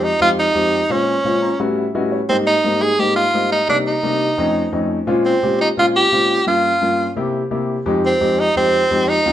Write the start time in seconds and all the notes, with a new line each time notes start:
0.04 D#4
0.20 F2 G#3 C4 D#4 F4 G4
0.40 D#4
0.54 F2 G#3 C4 D#4 G4
0.89 A#2 G#3 C4 C#4 F4
1.24 A#2 G#3 C4 C#4 F4
1.42 A#5
1.60 A2 G3 B3 C#4 E4 F#4 F#5
1.78 E5
1.95 A2 G3 B3 C#4 E4 F#4 D#5
2.12 C#5
2.29 G#2 G3 A#3 C4 D#4
2.47 D#4
2.64 G#2 G3 A#3 C4 D#4
2.82 G#4
2.99 G#2 G3 A#3 C4 D#4 G4
3.16 F4
3.34 G#2 G3 A#3 C4 D#4
3.52 D#4
3.68 C3 G3 A#3 D4 D#4
3.87 D#4
4.03 C3 G3 A#3 D4 D#4
4.38 F2 A3 C4 C#4 D#4
4.72 F2 A3 C4 C#4 D#4
5.07 A#2 G#3 C4 C#4 F4
5.25 C4
5.43 A#2 G#3 C4 C#4 G4
5.61 D#4
5.77 A#2 G#3 C4 C#4 F4
5.96 G4
6.12 A#2 G#3 C4 C#4 F4
6.46 G2 A#3 C#4 F4
6.81 G2 A#3 C#4 F4
7.16 C3 A#3 E4 G4
7.51 C3 A#3 E4 G4
7.86 F2 G#3 C4 D#4 G4
8.06 C4
8.21 F2 G#3 C4 D#4 G4
8.40 D#4
8.56 F2 G#3 C4 D#4 G4
8.91 F2 G#3 C4 D#4 G4
9.09 D#4
9.26 D#2 F#3 C#4 F4